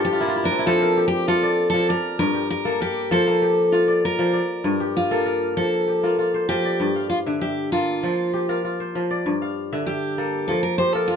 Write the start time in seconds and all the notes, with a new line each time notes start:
Already playing: G2 F4 A4 C5 D5
0.05 G4
0.13 F4
0.20 A#3 E4
0.28 F4
0.36 E4
0.43 D4 A#4
0.51 C4
0.59 E4
0.66 F3 A4 C5
0.82 A#4
0.97 G4
1.08 G4
1.28 F4 A4
1.43 D5
1.70 F3 A4
1.89 A#4 D5
2.19 G2 A#4
2.34 G4
2.50 A#4
2.65 A#3 A4
2.81 G4 A#4
3.11 F3 A4 C5
3.27 A#3
3.42 G4
3.72 F4
3.88 D5
4.05 A#4
4.19 F3
4.33 D5
4.64 G2
4.80 G4
4.97 F4
5.11 A#3 A4
5.26 A#4
5.57 F3 A4
5.88 G4
6.03 A#3 F4
6.18 F4
6.34 C5
6.49 F3 G4
6.65 D5
6.80 G2
6.96 F5
7.09 F4
7.26 D3 E5
7.41 G4 E5
7.72 A#3 F4 A4
8.03 F3
8.34 G4
8.49 F4 A#4
8.64 F4
8.80 C5
8.95 F3
9.11 D5
9.26 G2
9.42 F5
9.72 D3 E5
9.86 G4 E5
10.18 A#3 A4
10.48 F3 A4
10.63 A#4
10.78 G4 C5
10.93 F4 A4 A#4
11.08 F4